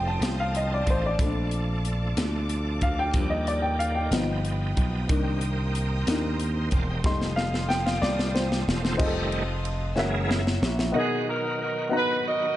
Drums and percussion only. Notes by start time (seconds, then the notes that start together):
0.22 snare, closed hi-hat
0.55 closed hi-hat
0.87 kick, closed hi-hat
1.19 kick, closed hi-hat
1.51 closed hi-hat
1.85 closed hi-hat
2.17 snare, closed hi-hat
2.49 closed hi-hat
2.81 kick, closed hi-hat
3.14 kick, closed hi-hat
3.47 closed hi-hat
3.80 closed hi-hat
4.12 snare, closed hi-hat
4.45 closed hi-hat
4.77 kick, closed hi-hat
5.09 kick, closed hi-hat
5.41 closed hi-hat
5.75 closed hi-hat
6.07 snare, closed hi-hat
6.40 closed hi-hat
6.71 kick, closed hi-hat
7.04 kick, snare
7.21 snare
7.38 snare
7.54 snare
7.70 snare
7.87 snare
8.03 snare
8.19 snare
8.36 snare
8.52 snare
8.69 snare
8.85 snare
9.00 kick, crash
9.32 ride
9.65 ride
9.98 snare
10.31 snare
10.47 snare
10.63 snare
10.79 snare